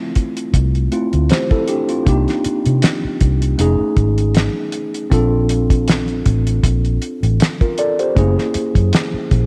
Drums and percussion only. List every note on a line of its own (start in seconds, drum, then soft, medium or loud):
0.15 kick medium
0.15 closed hi-hat medium
0.37 closed hi-hat medium
0.54 kick medium
0.54 closed hi-hat medium
0.75 closed hi-hat soft
0.92 closed hi-hat medium
1.13 closed hi-hat soft
1.29 snare loud
1.29 closed hi-hat medium
1.51 kick medium
1.51 closed hi-hat soft
1.68 closed hi-hat medium
1.89 closed hi-hat soft
2.06 kick medium
2.06 closed hi-hat medium
2.28 snare soft
2.28 closed hi-hat soft
2.44 closed hi-hat medium
2.66 closed hi-hat soft
2.82 snare loud
2.82 closed hi-hat medium
3.21 kick medium
3.21 closed hi-hat medium
3.42 closed hi-hat soft
3.59 closed hi-hat medium
3.97 kick medium
3.97 closed hi-hat soft
4.18 closed hi-hat soft
4.35 snare loud
4.35 closed hi-hat medium
4.72 closed hi-hat medium
4.94 closed hi-hat soft
5.12 kick medium
5.12 closed hi-hat medium
5.49 closed hi-hat medium
5.70 kick medium
5.70 closed hi-hat medium
5.88 snare loud
5.88 closed hi-hat medium
6.08 closed hi-hat soft
6.26 kick medium
6.26 closed hi-hat medium
6.47 closed hi-hat soft
6.63 kick medium
6.63 closed hi-hat medium
6.85 closed hi-hat soft
7.02 closed hi-hat medium
7.23 closed hi-hat soft
7.40 snare loud
7.40 closed hi-hat medium
7.61 kick medium
7.61 closed hi-hat soft
7.78 closed hi-hat medium
7.99 closed hi-hat soft
8.17 kick medium
8.17 closed hi-hat medium
8.39 snare soft
8.54 closed hi-hat medium
8.75 kick medium
8.75 closed hi-hat medium
8.93 snare loud
8.93 closed hi-hat medium
9.31 kick medium
9.31 closed hi-hat medium